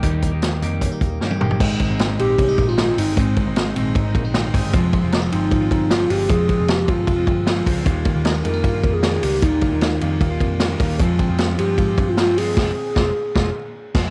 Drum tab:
CC |----------------|x---------------|----------------|----------------|
RD |----------------|--x-x-x-x-x-x-x-|x-x-x-x-x-x-x-x-|x-x-x-x-x-x-x-x-|
HH |x-x-x-x-x-x-----|--------------o-|p-------------o-|p-------------o-|
SD |----o-------o---|----o-------o---|----o-------o---|----o-------o---|
T1 |-------------o--|----------------|----------------|----------------|
T2 |--------------o-|----------------|----------------|----------------|
FT |---------------o|----------------|----------------|----------------|
BD |o-o-----o-o-----|o-o-----o-o-----|o-o-----o-o---o-|o-o-----o-o-----|

CC |----------------|----------------|----------------|----------------|
RD |x-x-x-x-x-x-x-x-|x-x-x-x-x-x-x-x-|x-x-x-x-x-x-x-x-|x-x-x-x-x-x-x-x-|
HH |p-------------o-|p-------------o-|p-------------o-|p-------------o-|
SD |----o-------o---|----o-------o---|----o-------o---|----o-------o---|
T1 |----------------|----------------|----------------|----------------|
T2 |----------------|----------------|----------------|----------------|
FT |----------------|----------------|----------------|----------------|
BD |o-o---o-o-o---o-|o-o-----o-o-----|o-o-----o-o---o-|o-o-----o-o-----|

CC |x-------------x-|
RD |----------------|
HH |----------------|
SD |o---o---o-----o-|
T1 |----------------|
T2 |----------------|
FT |----------------|
BD |o---o---o-----o-|